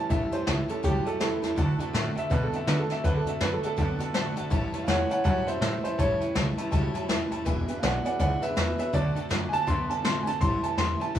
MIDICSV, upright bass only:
0, 0, Header, 1, 3, 480
1, 0, Start_track
1, 0, Tempo, 368324
1, 134, Time_signature, 4, 2, 24, 8
1, 14583, End_track
2, 0, Start_track
2, 0, Title_t, "Upright bass"
2, 0, Program_c, 0, 32
2, 132, Note_on_c, 0, 33, 98
2, 401, Note_off_c, 0, 33, 0
2, 614, Note_on_c, 0, 37, 92
2, 881, Note_off_c, 0, 37, 0
2, 1093, Note_on_c, 0, 37, 87
2, 1360, Note_off_c, 0, 37, 0
2, 1569, Note_on_c, 0, 40, 92
2, 1838, Note_off_c, 0, 40, 0
2, 1855, Note_on_c, 0, 40, 89
2, 2032, Note_off_c, 0, 40, 0
2, 2052, Note_on_c, 0, 38, 97
2, 2319, Note_off_c, 0, 38, 0
2, 2530, Note_on_c, 0, 45, 80
2, 2797, Note_off_c, 0, 45, 0
2, 3008, Note_on_c, 0, 47, 91
2, 3276, Note_off_c, 0, 47, 0
2, 3482, Note_on_c, 0, 50, 88
2, 3752, Note_off_c, 0, 50, 0
2, 3967, Note_on_c, 0, 38, 100
2, 4235, Note_off_c, 0, 38, 0
2, 4441, Note_on_c, 0, 42, 83
2, 4711, Note_off_c, 0, 42, 0
2, 4924, Note_on_c, 0, 42, 94
2, 5193, Note_off_c, 0, 42, 0
2, 5395, Note_on_c, 0, 45, 91
2, 5667, Note_off_c, 0, 45, 0
2, 5687, Note_on_c, 0, 31, 90
2, 5865, Note_off_c, 0, 31, 0
2, 5879, Note_on_c, 0, 33, 93
2, 6150, Note_off_c, 0, 33, 0
2, 6353, Note_on_c, 0, 40, 89
2, 6626, Note_off_c, 0, 40, 0
2, 6839, Note_on_c, 0, 42, 98
2, 7109, Note_off_c, 0, 42, 0
2, 7311, Note_on_c, 0, 45, 85
2, 7585, Note_off_c, 0, 45, 0
2, 7807, Note_on_c, 0, 33, 96
2, 8073, Note_off_c, 0, 33, 0
2, 8285, Note_on_c, 0, 37, 91
2, 8552, Note_off_c, 0, 37, 0
2, 8764, Note_on_c, 0, 37, 91
2, 9032, Note_off_c, 0, 37, 0
2, 9243, Note_on_c, 0, 40, 84
2, 9512, Note_off_c, 0, 40, 0
2, 9536, Note_on_c, 0, 40, 86
2, 9710, Note_off_c, 0, 40, 0
2, 9720, Note_on_c, 0, 28, 100
2, 9991, Note_off_c, 0, 28, 0
2, 10201, Note_on_c, 0, 35, 90
2, 10471, Note_off_c, 0, 35, 0
2, 10683, Note_on_c, 0, 37, 87
2, 10953, Note_off_c, 0, 37, 0
2, 11169, Note_on_c, 0, 40, 86
2, 11437, Note_off_c, 0, 40, 0
2, 11641, Note_on_c, 0, 38, 99
2, 11913, Note_off_c, 0, 38, 0
2, 12128, Note_on_c, 0, 42, 84
2, 12397, Note_off_c, 0, 42, 0
2, 12610, Note_on_c, 0, 42, 97
2, 12879, Note_off_c, 0, 42, 0
2, 13079, Note_on_c, 0, 45, 93
2, 13353, Note_off_c, 0, 45, 0
2, 13373, Note_on_c, 0, 32, 86
2, 13552, Note_off_c, 0, 32, 0
2, 13568, Note_on_c, 0, 33, 97
2, 13838, Note_off_c, 0, 33, 0
2, 14040, Note_on_c, 0, 40, 90
2, 14314, Note_off_c, 0, 40, 0
2, 14529, Note_on_c, 0, 42, 90
2, 14583, Note_off_c, 0, 42, 0
2, 14583, End_track
3, 0, Start_track
3, 0, Title_t, "Muted upright bass strokes"
3, 425, Note_on_c, 9, 29, 70
3, 556, Note_off_c, 9, 29, 0
3, 900, Note_on_c, 9, 29, 77
3, 1030, Note_off_c, 9, 29, 0
3, 2340, Note_on_c, 9, 29, 70
3, 2470, Note_off_c, 9, 29, 0
3, 2822, Note_on_c, 9, 29, 78
3, 2952, Note_off_c, 9, 29, 0
3, 3300, Note_on_c, 9, 29, 70
3, 3430, Note_off_c, 9, 29, 0
3, 3774, Note_on_c, 9, 29, 72
3, 3904, Note_off_c, 9, 29, 0
3, 4250, Note_on_c, 9, 29, 71
3, 4380, Note_off_c, 9, 29, 0
3, 4732, Note_on_c, 9, 29, 72
3, 4862, Note_off_c, 9, 29, 0
3, 5208, Note_on_c, 9, 29, 72
3, 5338, Note_off_c, 9, 29, 0
3, 6171, Note_on_c, 9, 29, 71
3, 6301, Note_off_c, 9, 29, 0
3, 7124, Note_on_c, 9, 29, 75
3, 7254, Note_off_c, 9, 29, 0
3, 7609, Note_on_c, 9, 29, 69
3, 7739, Note_off_c, 9, 29, 0
3, 8089, Note_on_c, 9, 29, 72
3, 8220, Note_off_c, 9, 29, 0
3, 8580, Note_on_c, 9, 29, 72
3, 8710, Note_off_c, 9, 29, 0
3, 9055, Note_on_c, 9, 29, 69
3, 9185, Note_off_c, 9, 29, 0
3, 10495, Note_on_c, 9, 29, 79
3, 10626, Note_off_c, 9, 29, 0
3, 10974, Note_on_c, 9, 29, 74
3, 11104, Note_off_c, 9, 29, 0
3, 11456, Note_on_c, 9, 29, 70
3, 11586, Note_off_c, 9, 29, 0
3, 11939, Note_on_c, 9, 29, 68
3, 12069, Note_off_c, 9, 29, 0
3, 12415, Note_on_c, 9, 29, 81
3, 12546, Note_off_c, 9, 29, 0
3, 12895, Note_on_c, 9, 29, 73
3, 13025, Note_off_c, 9, 29, 0
3, 13857, Note_on_c, 9, 29, 69
3, 13987, Note_off_c, 9, 29, 0
3, 14339, Note_on_c, 9, 29, 81
3, 14469, Note_off_c, 9, 29, 0
3, 14583, End_track
0, 0, End_of_file